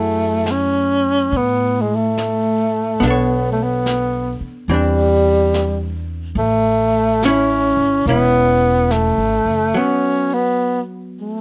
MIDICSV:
0, 0, Header, 1, 6, 480
1, 0, Start_track
1, 0, Tempo, 845070
1, 1713, Time_signature, 4, 2, 24, 8
1, 6480, End_track
2, 0, Start_track
2, 0, Title_t, "Hollow-body jazz guitar"
2, 0, Program_c, 0, 26
2, 0, Note_on_c, 0, 54, 29
2, 0, Note_on_c, 0, 57, 31
2, 0, Note_on_c, 0, 64, 33
2, 0, Note_on_c, 0, 68, 34
2, 1702, Note_off_c, 0, 57, 0
2, 1705, Note_on_c, 0, 59, 36
2, 1716, Note_off_c, 0, 54, 0
2, 1720, Note_off_c, 0, 64, 0
2, 1721, Note_off_c, 0, 68, 0
2, 1722, Note_on_c, 0, 62, 37
2, 1747, Note_on_c, 0, 69, 40
2, 1763, Note_on_c, 0, 73, 40
2, 2663, Note_off_c, 0, 59, 0
2, 2667, Note_on_c, 0, 52, 46
2, 2672, Note_off_c, 0, 62, 0
2, 2674, Note_on_c, 0, 60, 45
2, 2685, Note_off_c, 0, 69, 0
2, 2689, Note_on_c, 0, 62, 45
2, 2693, Note_off_c, 0, 73, 0
2, 3619, Note_off_c, 0, 52, 0
2, 3622, Note_off_c, 0, 60, 0
2, 3630, Note_off_c, 0, 62, 0
2, 4121, Note_on_c, 0, 61, 51
2, 4133, Note_on_c, 0, 64, 51
2, 4589, Note_off_c, 0, 61, 0
2, 4596, Note_off_c, 0, 64, 0
2, 4596, Note_on_c, 0, 61, 35
2, 4603, Note_on_c, 0, 64, 42
2, 5535, Note_on_c, 0, 54, 40
2, 5545, Note_off_c, 0, 61, 0
2, 5549, Note_off_c, 0, 64, 0
2, 5549, Note_on_c, 0, 59, 34
2, 6480, Note_off_c, 0, 54, 0
2, 6480, Note_off_c, 0, 59, 0
2, 6480, End_track
3, 0, Start_track
3, 0, Title_t, "Tenor saxophone"
3, 0, Program_c, 1, 66
3, 0, Note_on_c, 1, 57, 72
3, 289, Note_on_c, 1, 61, 86
3, 297, Note_off_c, 1, 57, 0
3, 774, Note_on_c, 1, 59, 69
3, 783, Note_off_c, 1, 61, 0
3, 1029, Note_on_c, 1, 56, 54
3, 1037, Note_off_c, 1, 59, 0
3, 1105, Note_on_c, 1, 57, 66
3, 1114, Note_off_c, 1, 56, 0
3, 1743, Note_on_c, 1, 59, 71
3, 1752, Note_off_c, 1, 57, 0
3, 1993, Note_off_c, 1, 59, 0
3, 1998, Note_on_c, 1, 57, 52
3, 2060, Note_on_c, 1, 59, 65
3, 2068, Note_off_c, 1, 57, 0
3, 2521, Note_off_c, 1, 59, 0
3, 2669, Note_on_c, 1, 55, 93
3, 3436, Note_off_c, 1, 55, 0
3, 3623, Note_on_c, 1, 57, 82
3, 4114, Note_on_c, 1, 61, 84
3, 4123, Note_off_c, 1, 57, 0
3, 4583, Note_off_c, 1, 61, 0
3, 4587, Note_on_c, 1, 59, 81
3, 5063, Note_on_c, 1, 57, 70
3, 5072, Note_off_c, 1, 59, 0
3, 5553, Note_on_c, 1, 61, 77
3, 5562, Note_off_c, 1, 57, 0
3, 5869, Note_on_c, 1, 59, 67
3, 5877, Note_off_c, 1, 61, 0
3, 6143, Note_off_c, 1, 59, 0
3, 6365, Note_on_c, 1, 57, 64
3, 6480, Note_off_c, 1, 57, 0
3, 6480, End_track
4, 0, Start_track
4, 0, Title_t, "Upright bass"
4, 0, Program_c, 2, 32
4, 0, Note_on_c, 2, 42, 60
4, 724, Note_off_c, 2, 42, 0
4, 750, Note_on_c, 2, 45, 68
4, 1690, Note_off_c, 2, 45, 0
4, 1708, Note_on_c, 2, 35, 65
4, 2481, Note_off_c, 2, 35, 0
4, 2658, Note_on_c, 2, 40, 68
4, 3592, Note_off_c, 2, 40, 0
4, 3608, Note_on_c, 2, 33, 72
4, 4384, Note_off_c, 2, 33, 0
4, 4412, Note_on_c, 2, 32, 56
4, 4564, Note_off_c, 2, 32, 0
4, 4576, Note_on_c, 2, 28, 67
4, 5192, Note_off_c, 2, 28, 0
4, 5212, Note_on_c, 2, 32, 46
4, 5362, Note_off_c, 2, 32, 0
4, 5370, Note_on_c, 2, 30, 49
4, 5521, Note_off_c, 2, 30, 0
4, 6480, End_track
5, 0, Start_track
5, 0, Title_t, "Muted upright bass strokes"
5, 2500, Note_on_c, 9, 29, 31
5, 2557, Note_off_c, 9, 29, 0
5, 6480, End_track
6, 0, Start_track
6, 0, Title_t, "Drums"
6, 260, Note_on_c, 9, 38, 32
6, 260, Note_on_c, 9, 44, 46
6, 317, Note_off_c, 9, 38, 0
6, 317, Note_off_c, 9, 44, 0
6, 755, Note_on_c, 9, 25, 29
6, 1236, Note_on_c, 9, 38, 36
6, 1236, Note_on_c, 9, 44, 41
6, 1293, Note_off_c, 9, 38, 0
6, 1293, Note_off_c, 9, 44, 0
6, 1715, Note_off_c, 9, 25, 0
6, 1715, Note_on_c, 9, 25, 32
6, 1715, Note_on_c, 9, 38, 24
6, 1772, Note_off_c, 9, 38, 0
6, 2193, Note_on_c, 9, 38, 35
6, 2193, Note_on_c, 9, 44, 39
6, 2250, Note_off_c, 9, 38, 0
6, 2250, Note_off_c, 9, 44, 0
6, 2669, Note_off_c, 9, 25, 0
6, 2669, Note_on_c, 9, 25, 29
6, 3147, Note_on_c, 9, 38, 32
6, 3147, Note_on_c, 9, 44, 41
6, 3204, Note_off_c, 9, 38, 0
6, 3204, Note_off_c, 9, 44, 0
6, 3626, Note_off_c, 9, 25, 0
6, 3626, Note_on_c, 9, 25, 34
6, 4104, Note_on_c, 9, 38, 35
6, 4104, Note_on_c, 9, 44, 43
6, 4161, Note_off_c, 9, 38, 0
6, 4161, Note_off_c, 9, 44, 0
6, 4584, Note_off_c, 9, 25, 0
6, 4584, Note_on_c, 9, 25, 35
6, 4584, Note_on_c, 9, 38, 25
6, 4640, Note_off_c, 9, 38, 0
6, 5058, Note_on_c, 9, 38, 34
6, 5058, Note_on_c, 9, 44, 50
6, 5115, Note_off_c, 9, 38, 0
6, 5115, Note_off_c, 9, 44, 0
6, 5923, Note_off_c, 9, 25, 0
6, 6480, End_track
0, 0, End_of_file